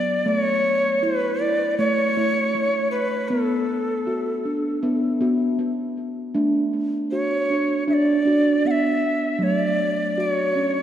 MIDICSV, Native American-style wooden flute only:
0, 0, Header, 1, 2, 480
1, 0, Start_track
1, 0, Key_signature, 2, "minor"
1, 0, Tempo, 761421
1, 170, Time_signature, 4, 2, 24, 8
1, 6824, End_track
2, 0, Start_track
2, 0, Title_t, "Native American-style wooden flute"
2, 0, Program_c, 0, 77
2, 0, Note_on_c, 0, 74, 87
2, 180, Note_on_c, 0, 73, 97
2, 190, Note_off_c, 0, 74, 0
2, 654, Note_on_c, 0, 71, 90
2, 663, Note_off_c, 0, 73, 0
2, 890, Note_on_c, 0, 74, 80
2, 899, Note_off_c, 0, 71, 0
2, 1117, Note_off_c, 0, 74, 0
2, 1121, Note_on_c, 0, 73, 93
2, 1819, Note_off_c, 0, 73, 0
2, 1836, Note_on_c, 0, 71, 79
2, 2070, Note_on_c, 0, 69, 73
2, 2080, Note_off_c, 0, 71, 0
2, 3039, Note_off_c, 0, 69, 0
2, 4485, Note_on_c, 0, 73, 78
2, 4942, Note_off_c, 0, 73, 0
2, 4979, Note_on_c, 0, 76, 79
2, 5002, Note_on_c, 0, 74, 86
2, 5008, Note_off_c, 0, 76, 0
2, 5464, Note_on_c, 0, 78, 78
2, 5473, Note_off_c, 0, 74, 0
2, 5490, Note_on_c, 0, 76, 85
2, 5496, Note_off_c, 0, 78, 0
2, 5945, Note_on_c, 0, 73, 90
2, 5955, Note_off_c, 0, 76, 0
2, 6027, Note_off_c, 0, 73, 0
2, 6027, Note_on_c, 0, 74, 90
2, 6432, Note_on_c, 0, 73, 70
2, 6441, Note_off_c, 0, 74, 0
2, 6824, Note_off_c, 0, 73, 0
2, 6824, End_track
0, 0, End_of_file